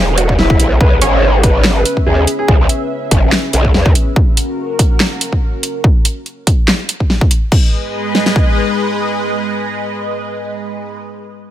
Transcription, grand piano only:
0, 0, Header, 1, 2, 480
1, 0, Start_track
1, 0, Key_signature, 5, "minor"
1, 0, Tempo, 419580
1, 922, Time_signature, 4, 2, 24, 8
1, 13163, End_track
2, 0, Start_track
2, 0, Title_t, "Grand piano"
2, 0, Program_c, 0, 0
2, 202, Note_on_c, 0, 66, 89
2, 343, Note_off_c, 0, 66, 0
2, 442, Note_on_c, 0, 64, 99
2, 708, Note_off_c, 0, 64, 0
2, 922, Note_on_c, 0, 71, 102
2, 1124, Note_off_c, 0, 71, 0
2, 1292, Note_on_c, 0, 73, 90
2, 1487, Note_off_c, 0, 73, 0
2, 1642, Note_on_c, 0, 71, 92
2, 1844, Note_off_c, 0, 71, 0
2, 2011, Note_on_c, 0, 71, 95
2, 2206, Note_off_c, 0, 71, 0
2, 2362, Note_on_c, 0, 68, 99
2, 2563, Note_off_c, 0, 68, 0
2, 2732, Note_on_c, 0, 68, 99
2, 2842, Note_off_c, 0, 68, 0
2, 13163, End_track
0, 0, End_of_file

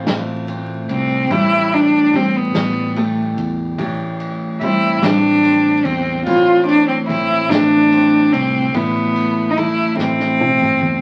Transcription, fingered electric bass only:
0, 0, Header, 1, 2, 480
1, 0, Start_track
1, 0, Key_signature, 0, "minor"
1, 0, Tempo, 826902
1, 759, Time_signature, 6, 3, 24, 8
1, 6393, End_track
2, 0, Start_track
2, 0, Title_t, "Fingered electric bass"
2, 0, Program_c, 0, 33
2, 43, Note_on_c, 0, 33, 77
2, 498, Note_off_c, 0, 33, 0
2, 521, Note_on_c, 0, 36, 81
2, 748, Note_off_c, 0, 36, 0
2, 760, Note_on_c, 0, 33, 85
2, 1456, Note_off_c, 0, 33, 0
2, 1475, Note_on_c, 0, 33, 82
2, 1933, Note_off_c, 0, 33, 0
2, 1957, Note_on_c, 0, 40, 76
2, 2186, Note_off_c, 0, 40, 0
2, 2197, Note_on_c, 0, 33, 91
2, 2894, Note_off_c, 0, 33, 0
2, 2913, Note_on_c, 0, 33, 84
2, 3372, Note_off_c, 0, 33, 0
2, 3394, Note_on_c, 0, 40, 85
2, 3624, Note_off_c, 0, 40, 0
2, 3635, Note_on_c, 0, 33, 92
2, 4334, Note_off_c, 0, 33, 0
2, 4357, Note_on_c, 0, 33, 94
2, 4815, Note_off_c, 0, 33, 0
2, 4838, Note_on_c, 0, 36, 85
2, 5066, Note_off_c, 0, 36, 0
2, 5076, Note_on_c, 0, 33, 96
2, 5775, Note_off_c, 0, 33, 0
2, 5798, Note_on_c, 0, 33, 93
2, 6256, Note_off_c, 0, 33, 0
2, 6280, Note_on_c, 0, 40, 86
2, 6393, Note_off_c, 0, 40, 0
2, 6393, End_track
0, 0, End_of_file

